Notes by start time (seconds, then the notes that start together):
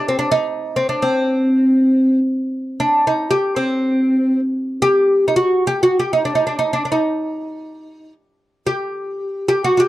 0.08 C4
0.19 D4
0.32 D#4
0.76 C4
0.89 D4
1.02 C4
2.80 D4
3.07 D#4
3.31 G4
3.56 C4
4.82 G4
5.28 D#4
5.36 F#4
5.67 G4
5.83 F#4
6.00 G4
6.13 D#4
6.25 D4
6.35 D#4
6.47 D4
6.59 D#4
6.73 D4
6.85 D4
6.92 D#4
8.67 G4
9.48 G4
9.64 F#4
9.77 F#4 G4